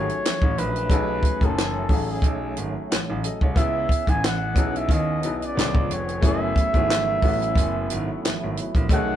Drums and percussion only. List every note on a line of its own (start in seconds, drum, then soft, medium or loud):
0.09 closed hi-hat soft
0.25 snare loud
0.25 clap medium
0.25 closed hi-hat medium
0.42 kick loud
0.58 closed hi-hat medium
0.76 closed hi-hat soft
0.90 kick loud
0.90 closed hi-hat medium
1.23 kick medium
1.23 closed hi-hat medium
1.41 kick medium
1.41 closed hi-hat soft
1.58 snare loud
1.58 clap medium
1.58 closed hi-hat medium
1.89 kick loud
1.89 open hi-hat soft
2.22 kick medium
2.22 closed hi-hat medium
2.57 closed hi-hat medium
2.92 snare loud
2.92 clap medium
2.92 closed hi-hat medium
3.24 closed hi-hat medium
3.41 kick medium
3.56 kick loud
3.56 closed hi-hat medium
3.89 kick medium
3.89 closed hi-hat medium
4.07 kick medium
4.07 closed hi-hat soft
4.24 snare loud
4.24 clap medium
4.24 closed hi-hat medium
4.56 kick loud
4.56 closed hi-hat medium
4.76 closed hi-hat soft
4.89 kick medium
4.89 closed hi-hat medium
5.23 closed hi-hat medium
5.42 closed hi-hat soft
5.58 snare loud
5.58 clap medium
5.58 closed hi-hat medium
5.75 kick loud
5.91 closed hi-hat medium
6.09 closed hi-hat soft
6.23 kick loud
6.23 closed hi-hat medium
6.56 kick medium
6.56 closed hi-hat medium
6.74 kick medium
6.74 closed hi-hat soft
6.90 snare loud
6.90 clap medium
6.90 closed hi-hat medium
7.22 kick medium
7.22 open hi-hat soft
7.42 closed hi-hat soft
7.55 kick medium
7.55 closed hi-hat medium
7.90 closed hi-hat medium
8.25 snare loud
8.25 clap medium
8.25 closed hi-hat medium
8.57 closed hi-hat medium
8.75 kick medium
8.75 closed hi-hat soft
8.89 kick loud
8.89 closed hi-hat medium